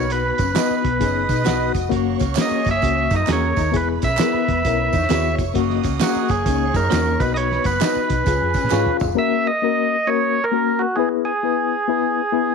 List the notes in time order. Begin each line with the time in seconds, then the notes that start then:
Already playing: B1 B3 D#4 F#4 B4 C#5 B5
0.10 B4, closed hi-hat, tambourine
0.38 F#1 C#4, kick, closed hi-hat, tambourine
0.54 B3 D#4 F#4 B4 D#5, snare, clap, closed hi-hat, tambourine
0.71 muted fingered electric bass stroke
0.84 B1, kick, closed hi-hat
0.99 F#1 B3 C#4 D#4 G#4 D#5 D#6, kick, closed hi-hat, tambourine
1.29 B2 D#4, kick, closed hi-hat, tambourine
1.44 B1 B3 D#4 F#4 B4 D#5, snare, clap, closed hi-hat, tambourine
1.74 F1, kick, closed hi-hat, tambourine
1.89 F#1 C#3 A#3 C#4 F#4 C#5 C#6, kick, closed hi-hat, tambourine
2.19 C#2 C#4, kick, closed hi-hat, tambourine
2.35 C#3 A#3 C#4 F#4 G#4 A#4, snare, clap, closed hi-hat, tambourine
2.41 D#5
2.51 muted fingered electric bass stroke
2.64 F#1, kick, snare, closed hi-hat, tambourine
2.71 E5
2.81 C#2 A#3 C#4 F#4, kick, closed hi-hat, tambourine
3.10 F#2 C#3 A#3 D#4 F#4 A#4 A#5, kick, closed hi-hat, tambourine
3.16 D#5
3.27 E2 A#3 C#4 F#4 G#4 A#4, snare, clap, closed hi-hat, tambourine
3.33 C#5
3.56 D#2 D#4, kick, closed hi-hat, tambourine
3.71 E1 B3 E4 G#4 B5, kick, closed hi-hat, tambourine
3.75 B4
4.02 B1 C#4 E5, kick, closed hi-hat, tambourine
4.17 B3 E4 G#4 A#4 B4, snare, clap, closed hi-hat, tambourine
4.34 muted fingered electric bass stroke
4.49 E1, kick, closed hi-hat
4.64 B1 B3 C#4 E4 A#4, kick, closed hi-hat, tambourine
4.93 E2 D#4 C#5 C#6, kick, closed hi-hat, tambourine
5.02 snare
5.09 D#2 B3 E4 F#4 G#4 B4, snare, clap, closed hi-hat, tambourine
5.39 F1, kick, closed hi-hat, tambourine
5.54 F#1 C#3 A#3 C#4 F#4 D#5 D#6, kick, closed hi-hat, tambourine
5.70 snare
5.84 C#2 C#4, kick, closed hi-hat, tambourine
6.00 C#3 A#3 C#4 F#4 G#4 A#4, snare, clap, closed hi-hat, tambourine
6.16 muted fingered electric bass stroke
6.28 F#1 G#4 C#5 C#6, kick, closed hi-hat, tambourine
6.45 C#2 A#3 C#4 D#4, kick, closed hi-hat, tambourine
6.74 F#2 C#3 A#3 D#4 F#4 A#4, kick, closed hi-hat, tambourine
6.90 E2 A#3 C#4 D#4 F#4 A#4, snare, clap, closed hi-hat, tambourine
7.19 B1 B3 D#4 F#4 B4 B5, kick, closed hi-hat, tambourine
7.34 C#5 D#5, closed hi-hat
7.52 snare
7.64 F#1 B3 B4, kick, closed hi-hat, tambourine
7.81 B3 D#4 F#4 B4 D#5, snare, clap, closed hi-hat, tambourine
7.96 muted fingered electric bass stroke
8.10 B1, kick, closed hi-hat, tambourine
8.25 C#2 C#4 F4 G#4 G#5, kick, closed hi-hat, tambourine
8.42 F2
8.54 C#4, kick, closed hi-hat, tambourine
8.64 A#2, snare
8.70 G#2 C#4 F4 G#4 C#5, snare, clap, tambourine
8.86 mid tom
9.00 F1, floor tom, tambourine
9.15 A#3 C#4 F#4 A#4 E5
9.47 D#5
9.62 A#3 C#4 F#4 A#4
10.07 A#3 C#4 F#4 A#4 C#5
10.44 A#4
10.52 A#3 C#4 F#4 A#4
10.79 F#4
10.96 B3 E4 G#4 B4
11.25 G#4
11.43 B3 E4 G#4 B4
11.88 B3 E4 G#4 B4
12.32 B3 E4 G#4 B4